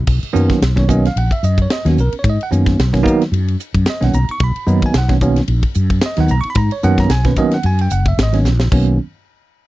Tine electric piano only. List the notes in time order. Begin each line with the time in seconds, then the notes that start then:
0.33 D#3 F#3 A#3 B3 C#4
0.76 D#3 F#3 A#3 B3 C#4 C#5
0.89 D#3 F#3 A#3 B3 C#4 D#5
1.07 F5
1.16 B3 C#4 F#5
1.32 E5
1.44 D#5
1.62 C#5
1.72 D#5
1.85 D#3 F#3 A#3 B3 C#4
1.89 F#4
2.00 A#4
2.13 B3 C#4
2.19 C#5
2.30 D#5
2.43 F#5
2.51 D#3 F#3 A#3 B3 C#4
2.93 D#3 F#3 A#3 B3 C#4
3.03 D#3 F#3 A#3 B3 D#4
3.31 B3 D#4
3.90 D#5
4.01 D#3 F#3 A#3 B3 C#4 F#5
4.15 A#5
4.30 B3 D#4 C#6
4.44 B5
4.67 D#3 F#3 A#3 B3 D#4
4.86 G#5
4.98 F#5
5.09 D#3 F#3 A#3 B3 C#4
5.22 D#3 F#3 A#3 B3 C#4
5.49 B3 D#4
6.06 D#5
6.17 D#3 F#3 A#3 B3 D#4 F#5
6.31 A#5
6.41 B3 D#4 C#6
6.50 B5
6.57 A#5
6.72 C#5
6.83 D#3 F#3 A#3 B3 C#4 F#5
7.00 A#5
7.11 G#5
7.25 D#3 F#3 A#3 B3 C#4 B4
7.38 D#3 F#3 A#3 B3 C#4 D#5
7.54 F#5
7.65 B3 C#4 G#5
7.81 G5
7.92 F#5
8.08 E5
8.23 D#5
8.33 D#3 F#3 A#3 B3 C#4
8.61 B3 D#4
8.73 D#3 F#3 A#3 B3 C#4